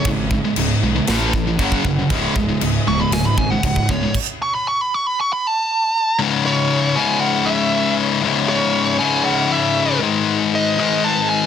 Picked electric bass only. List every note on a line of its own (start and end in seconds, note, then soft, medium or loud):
0.05 0.38 G#1 loud
0.57 0.73 C#1 medium
0.83 0.99 B1 medium
1.08 1.59 A1 loud
1.59 1.75 F#1 loud
1.85 2.01 F#1 loud
2.10 2.26 C#1 loud
2.36 2.52 C#1 medium
2.62 2.78 C#1 medium
2.88 3.04 C#1 medium
3.11 3.28 C#1 loud
3.37 3.54 G#1 medium
3.63 3.80 C#1 loud
3.89 4.05 C#1 loud